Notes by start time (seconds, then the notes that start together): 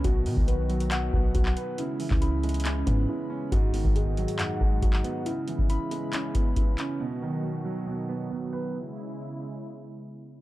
Already playing: B3
0.04 B1 B2 D#3 F#3 F#4, kick, closed hi-hat
0.26 B2 D#3, open hi-hat
0.37 B1, kick
0.47 B2 B4, closed hi-hat
0.69 F#3, closed hi-hat
0.80 closed hi-hat
0.91 B2 F#5, clap, closed hi-hat
1.13 B1 B3, kick
1.35 B1 B2 F#4, kick, closed hi-hat
1.45 clap
1.57 B4, closed hi-hat
1.78 C#3 G#3 E4, closed hi-hat
2.00 E3, open hi-hat
2.11 C#2, kick, clap
2.21 C#3 B5, closed hi-hat
2.43 G#3, closed hi-hat
2.49 closed hi-hat
2.54 closed hi-hat
2.60 closed hi-hat
2.65 C#3 C#4, clap, closed hi-hat
2.87 G#2 B3, kick, closed hi-hat
3.08 C#3 E4
3.30 C#4
3.52 G#1 G#2 D#3 G#3 B3 F#4, kick, closed hi-hat
3.74 D#3, open hi-hat
3.85 G#1, kick
3.96 G#2 G#4, closed hi-hat
4.17 F#3, closed hi-hat
4.28 closed hi-hat
4.39 G#2 F#5, clap, closed hi-hat
4.61 G#1 G#3, kick
4.82 G#1 G#2 F#4, kick, closed hi-hat
4.93 clap
5.04 B3, closed hi-hat
5.26 C#3 B3 E4, closed hi-hat
5.48 E3, closed hi-hat
5.59 kick
5.69 C#3 B5, closed hi-hat
5.91 G#3, closed hi-hat
6.13 C#3 C#4, clap, closed hi-hat
6.34 B3, kick, closed hi-hat
6.56 C#3 E4, kick, closed hi-hat
6.78 C#4, clap, closed hi-hat
7.00 B2 D#3 F#3 F#4
7.22 D#3
7.43 B2
7.65 F#3
7.86 B2
8.09 B3
8.31 B2
8.53 B4
8.74 C#3 G#3 E4